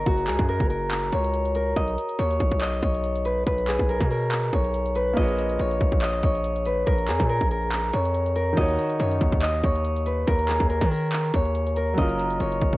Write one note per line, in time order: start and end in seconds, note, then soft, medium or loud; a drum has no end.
0.00 0.48 A#4 medium
0.00 1.12 C#5 medium
0.00 0.99 D#5 medium
0.06 0.29 F#1 loud
0.06 2.50 F#4 loud
0.06 kick loud
0.06 closed hi-hat medium
0.17 closed hi-hat medium
0.27 0.38 C#2 loud
0.27 2.55 G#4 medium
0.27 clap medium
0.27 closed hi-hat medium
0.39 0.59 F#2 loud
0.39 kick loud
0.39 closed hi-hat medium
0.49 0.69 A#4 medium
0.49 closed hi-hat medium
0.60 1.10 F#1 loud
0.60 kick loud
0.60 closed hi-hat medium
0.70 1.55 A#4 medium
0.70 closed hi-hat medium
0.91 clap loud
0.91 closed hi-hat medium
1.03 closed hi-hat medium
1.12 1.74 C#2 loud
1.12 2.19 C#5 medium
1.12 closed hi-hat medium
1.24 closed hi-hat medium
1.33 closed hi-hat medium
1.45 closed hi-hat medium
1.55 3.31 A#4 medium
1.55 closed hi-hat medium
1.76 1.97 B1 loud
1.76 2.61 D#5 loud
1.76 kick loud
1.76 closed hi-hat medium
1.88 closed hi-hat medium
1.98 closed hi-hat medium
2.09 closed hi-hat medium
2.19 2.39 D#2 loud
2.19 2.82 C#5 medium
2.19 closed hi-hat medium
2.31 closed hi-hat medium
2.40 2.51 B1 loud
2.40 kick loud
2.40 closed hi-hat medium
2.52 2.82 B1 loud
2.52 kick medium
2.61 4.40 D#5 medium
2.61 clap loud
2.61 closed hi-hat medium
2.73 closed hi-hat medium
2.82 3.44 B1 loud
2.82 4.53 C#5 medium
2.82 kick loud
2.82 closed hi-hat medium
2.94 closed hi-hat medium
3.04 closed hi-hat medium
3.15 closed hi-hat medium
3.25 3.46 B4 medium
3.25 closed hi-hat medium
3.46 3.78 B1 loud
3.46 3.95 B4 medium
3.46 kick loud
3.46 closed hi-hat medium
3.58 closed hi-hat medium
3.68 5.96 G#4 medium
3.68 clap medium
3.68 closed hi-hat medium
3.79 4.00 B1 loud
3.79 kick medium
3.79 closed hi-hat medium
3.89 4.10 A#4 medium
3.89 closed hi-hat medium
4.00 4.51 B2 loud
4.00 kick medium
4.00 closed hi-hat medium
4.10 5.02 A#4 medium
4.10 open hi-hat medium
4.32 clap loud
4.32 closed hi-hat medium
4.43 closed hi-hat medium
4.53 5.14 B1 loud
4.53 5.59 C#5 medium
4.53 kick loud
4.53 closed hi-hat medium
4.64 closed hi-hat soft
4.74 closed hi-hat medium
4.86 closed hi-hat medium
4.95 6.66 B4 medium
4.95 closed hi-hat medium
5.13 5.58 A#1 loud
5.13 8.52 A#3 medium
5.13 8.53 F4 medium
5.13 6.02 D#5 loud
5.13 kick loud
5.13 closed hi-hat medium
5.19 8.54 G#4 medium
5.19 8.56 C#5 medium
5.28 closed hi-hat medium
5.39 closed hi-hat medium
5.49 closed hi-hat medium
5.59 5.80 A#1 loud
5.59 6.23 C#5 medium
5.59 closed hi-hat medium
5.71 closed hi-hat medium
5.81 5.92 A#1 loud
5.81 kick loud
5.81 closed hi-hat medium
5.92 6.22 A#1 loud
5.92 kick medium
6.02 7.81 D#5 medium
6.02 clap loud
6.02 closed hi-hat medium
6.13 closed hi-hat medium
6.23 6.84 A#1 loud
6.23 7.93 C#5 medium
6.23 kick loud
6.23 closed hi-hat medium
6.35 closed hi-hat medium
6.44 closed hi-hat medium
6.56 closed hi-hat medium
6.66 6.92 B4 medium
6.66 closed hi-hat medium
6.86 7.10 A#1 loud
6.86 7.29 A#4 medium
6.86 kick loud
6.86 closed hi-hat medium
6.98 closed hi-hat medium
7.08 7.19 F2 loud
7.08 9.36 G#4 medium
7.08 clap medium
7.08 closed hi-hat medium
7.20 7.40 A#2 loud
7.20 kick loud
7.20 closed hi-hat medium
7.29 7.50 A#4 medium
7.29 closed hi-hat medium
7.41 7.91 A#1 loud
7.41 kick loud
7.41 closed hi-hat medium
7.51 8.35 A#4 medium
7.51 closed hi-hat medium
7.72 clap loud
7.72 closed hi-hat medium
7.84 closed hi-hat medium
7.93 8.55 F2 loud
7.93 9.00 C#5 medium
7.93 closed hi-hat medium
8.05 closed hi-hat medium
8.14 closed hi-hat medium
8.26 closed hi-hat medium
8.36 10.12 A#4 medium
8.36 closed hi-hat medium
8.53 11.91 D#3 medium
8.53 11.93 D#4 medium
8.57 8.78 D#2 loud
8.57 11.94 F#4 medium
8.57 11.95 C#5 medium
8.57 9.42 D#5 loud
8.57 kick loud
8.57 closed hi-hat medium
8.69 closed hi-hat medium
8.79 closed hi-hat medium
8.90 closed hi-hat medium
9.00 9.20 F#2 loud
9.00 9.63 C#5 medium
9.00 closed hi-hat medium
9.11 closed hi-hat medium
9.21 9.32 D#2 loud
9.21 kick loud
9.21 closed hi-hat medium
9.32 9.62 D#2 loud
9.32 kick medium
9.42 11.21 D#5 medium
9.42 clap loud
9.42 closed hi-hat medium
9.54 closed hi-hat medium
9.63 10.25 D#2 loud
9.63 11.34 C#5 medium
9.63 kick loud
9.63 closed hi-hat medium
9.75 closed hi-hat medium
9.85 closed hi-hat medium
9.96 closed hi-hat medium
10.06 10.33 B4 medium
10.06 closed hi-hat medium
10.27 10.59 D#2 loud
10.27 10.69 A#4 loud
10.27 kick loud
10.27 closed hi-hat medium
10.39 closed hi-hat medium
10.48 12.76 G#4 medium
10.48 clap medium
10.48 closed hi-hat medium
10.60 10.80 D#2 loud
10.60 kick loud
10.60 closed hi-hat medium
10.70 10.91 A#4 medium
10.70 closed hi-hat medium
10.81 11.32 D#3 loud
10.81 kick loud
10.81 closed hi-hat medium
10.91 11.76 A#4 medium
10.91 open hi-hat medium
11.12 clap loud
11.12 closed hi-hat medium
11.24 closed hi-hat medium
11.34 11.95 D#2 loud
11.34 12.40 C#5 medium
11.34 kick loud
11.34 closed hi-hat medium
11.45 closed hi-hat soft
11.55 closed hi-hat medium
11.67 closed hi-hat medium
11.76 12.77 A#4 medium
11.76 closed hi-hat medium
11.94 12.39 F#1 loud
11.94 12.77 F#3 medium
11.94 12.77 C#4 medium
11.94 kick loud
11.94 closed hi-hat medium
11.98 12.77 F4 medium
11.98 12.77 A#4 medium
11.98 12.77 D#5 loud
12.09 closed hi-hat medium
12.19 closed hi-hat medium
12.30 closed hi-hat medium
12.40 12.61 F#1 loud
12.40 12.77 C#5 medium
12.40 closed hi-hat medium
12.52 closed hi-hat medium
12.61 12.72 F#1 loud
12.61 kick loud
12.61 closed hi-hat medium
12.73 12.77 F#1 loud
12.73 kick medium